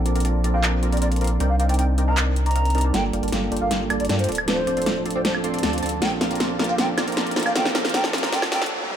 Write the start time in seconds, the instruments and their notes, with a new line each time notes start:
Already playing: sub bass A#1, tine electric piano F3 A#3 C4 D4 A4
0.06 supersaw synth C4 F4 A#4 D5 A5, closed hi-hat
0.16 supersaw synth C4 F4 A#4 D5 A#5, closed hi-hat
0.20 closed hi-hat
0.25 supersaw synth C4 F4 A#4 D5 A5, closed hi-hat
0.43 tine electric piano F3 A#3 C4 D4 A4, supersaw synth C4 F4 A#4 D5 A5, closed hi-hat
0.54 supersaw synth C4 F4 A#4 D5 G5, flute F5
0.64 supersaw synth C4 F4 A#4 D5 A5, clap, closed hi-hat
0.82 tine electric piano F3 A#3 C4 D4 A4, supersaw synth C4 F4 A#4 D5 A#5, closed hi-hat
0.92 supersaw synth C4 F4 A#4 D5 A#5, flute D5, closed hi-hat
0.97 closed hi-hat
1.01 supersaw synth C4 F4 A#4 D5 A5, flute D5, closed hi-hat
1.12 closed hi-hat
1.16 closed hi-hat
1.21 supersaw synth C4 F4 A#4 D5 C6, closed hi-hat
1.24 closed hi-hat
1.27 closed hi-hat
1.38 sub bass C2, tine electric piano G3 C4 D4 D#4 A#4, supersaw synth C4 D#4 A#4 D5 G5, closed hi-hat
1.50 flute F5
1.59 supersaw synth C4 D#4 A#4 D5 G5, flute F5, closed hi-hat
1.69 supersaw synth C4 D#4 A#4 D5 A5, flute G5, closed hi-hat
1.74 closed hi-hat
1.79 supersaw synth C4 D#4 A#4 D5 G5, flute G5, closed hi-hat
1.97 tine electric piano G3 C4 D4 D#4 A#4, supersaw synth C4 D#4 A#4 D5 G5, closed hi-hat
2.07 supersaw synth C4 D#4 A#4 D5 F5, flute A#5
2.17 supersaw synth C4 D#4 A#4 D5, clap, closed hi-hat
2.36 closed hi-hat
2.46 supersaw synth C4 D#4 A#4 D5 A#5, flute A#5, closed hi-hat
2.51 closed hi-hat
2.56 supersaw synth C4 D#4 A#4 D5 F5, closed hi-hat
2.65 closed hi-hat
2.70 tine electric piano G3 C4, closed hi-hat
2.75 supersaw synth C4 D#4 A#4 D5 A5, tine electric piano D4 D#4 A#4, closed hi-hat
2.78 closed hi-hat
2.81 supersaw synth C4 D#4 A#4 D5 A5, closed hi-hat
2.92 sub bass G1, tine electric piano G3 A#3 D4 F4 A4, supersaw synth A#3 F4 A4 D5 G5, flute G5, snare, closed hi-hat, riser
3.13 sub bass G1, supersaw synth A#3 F4 A4 D5 G5, closed hi-hat
3.23 sub bass G1, supersaw synth A#3 F4 A4 D5 A5, closed hi-hat
3.28 closed hi-hat
3.32 sub bass G1, supersaw synth A#3 F4 A4 D5 G5, snare, closed hi-hat
3.51 sub bass G1, tine electric piano G3 A#3 D4 F4 A4, supersaw synth A#3 F4 A4 D5 G5, closed hi-hat
3.57 closed hi-hat
3.61 sub bass G1, supersaw synth A#3 F4 A4 D5 F5, flute F5
3.71 sub bass G1, supersaw synth A#3 F4 A4 D5 G5, snare, closed hi-hat
3.89 sub bass G1, tine electric piano G3 A#3 D4 F4 A4, supersaw synth A#3 F4 A4 D5 A5, closed hi-hat, high woodblock
4.00 sub bass G1, supersaw synth A#3 F4 A4 D5 A5, flute D5, closed hi-hat
4.05 closed hi-hat
4.09 sub bass G2, supersaw synth A#3 F4 A4 D5 G5, flute D5, snare, closed hi-hat
4.19 flute C5, closed hi-hat
4.24 closed hi-hat
4.29 sub bass D1, supersaw synth C4 F4 A4 D5 A5, closed hi-hat
4.32 closed hi-hat
4.35 closed hi-hat, high woodblock
4.46 sub bass D1, tine electric piano F3 A3 C4 D4, supersaw synth C4 F4 A4 D5 A5, flute C5, snare, closed hi-hat
4.50 tine electric piano A4
4.67 sub bass D1, supersaw synth C4 F4 A4 D5 A5, closed hi-hat
4.77 sub bass D1, supersaw synth C4 F4 A4 D5 C6, closed hi-hat
4.82 closed hi-hat
4.86 sub bass D1, supersaw synth C4 F4 A4 D5 A5, snare, closed hi-hat
5.05 sub bass D1, tine electric piano F3 A3 C4 D4 A4, supersaw synth C4 F4 A4 D5 A5, closed hi-hat
5.10 closed hi-hat
5.15 sub bass D1, supersaw synth C4 F4 A4 D5 G5, flute C5
5.25 sub bass D1, supersaw synth C4 F4 A4 D5 A5, flute C5, snare, closed hi-hat
5.35 high woodblock
5.43 sub bass D1, tine electric piano F3 A3 C4 D4 A4, supersaw synth C4 F4 A4 D5 C6, closed hi-hat
5.54 sub bass D1, supersaw synth C4 F4 A4 D5 C6, closed hi-hat
5.59 closed hi-hat
5.63 sub bass D2, supersaw synth C4 F4 A4 D5 A5, snare, closed hi-hat
5.73 closed hi-hat
5.78 closed hi-hat
5.83 sub bass D2, supersaw synth C4 F4 A4 D5 A5, closed hi-hat
5.86 closed hi-hat
5.89 closed hi-hat
6.00 sub bass A#1, tine electric piano F3 A#3 C4 D4, supersaw synth C4 F4 A#4 D5 A5, flute G5, snare, closed hi-hat
6.04 tine electric piano A4
6.21 sub bass A#1, supersaw synth C4 F4 A#4 D5 A5, snare, closed hi-hat
6.31 sub bass A#1, supersaw synth C4 F4 A#4 D5 A#5, closed hi-hat
6.35 closed hi-hat
6.40 sub bass A#1, supersaw synth C4 F4 A#4 D5 A5, snare, closed hi-hat
6.58 sub bass A#1, tine electric piano F3 A#3 C4 D4 A4, supersaw synth C4 F4 A#4 D5 A5, snare, closed hi-hat
6.64 closed hi-hat
6.69 sub bass A#1, supersaw synth C4 F4 A#4 D5 G5, flute F5
6.77 sub bass A#1, tine electric piano F3 A#3 C4 D4, supersaw synth C4 F4 A#4 D5 A5, flute G5, snare, closed hi-hat
6.81 tine electric piano A4
6.98 sub bass A#1, supersaw synth C4 F4 A#4 D5 A5, snare, closed hi-hat, high woodblock
7.08 sub bass A#1, supersaw synth C4 F4 A#4 D5 A#5, closed hi-hat
7.12 closed hi-hat
7.17 sub bass A#1, supersaw synth C4 F4 A#4 D5 A5, snare, closed hi-hat
7.27 closed hi-hat
7.31 closed hi-hat
7.35 sub bass A#1, tine electric piano F3 A#3 C4 D4 A4, supersaw synth C4 F4 A#4 D5 A5, snare, closed hi-hat
7.39 closed hi-hat
7.43 sub bass A#1, supersaw synth C4 F4 A#4 D5 G5, flute F5, closed hi-hat, high woodblock
7.54 sub bass C2, tine electric piano F3 A#3 C4 D4, supersaw synth C4 F4 A#4 D5 A5, flute G5, snare, closed hi-hat
7.58 tine electric piano A4
7.65 snare
7.75 sub bass C2, supersaw synth C4 F4 A#4 D5 A5, snare, closed hi-hat
7.85 sub bass C2, supersaw synth C4 F4 A#4 D5 A#5, snare, closed hi-hat
7.89 tine electric piano F3 A#3, closed hi-hat
7.94 sub bass C2, tine electric piano C4 D4 A4, supersaw synth C4 F4 A#4 D5 A5, flute G5, snare, closed hi-hat
8.04 snare
8.13 sub bass C2, supersaw synth C4 F4 A#4 D5 A5, snare, closed hi-hat
8.18 closed hi-hat
8.23 sub bass C2, supersaw synth C4 F4 A#4 D5 A#5, snare
8.31 sub bass C2, tine electric piano F3 A#3 C4 D4 A4, supersaw synth C4 F4 A#4 D5 A5, flute G5, snare, closed hi-hat
8.42 snare, high woodblock
8.50 sub bass C2, tine electric piano F3 A#3 C4 D4, supersaw synth C4 F4 A#4 D5 A5, flute G5, snare, closed hi-hat
8.54 tine electric piano A4
8.62 snare, closed hi-hat
8.66 closed hi-hat
8.81 high tom
8.90 mid tom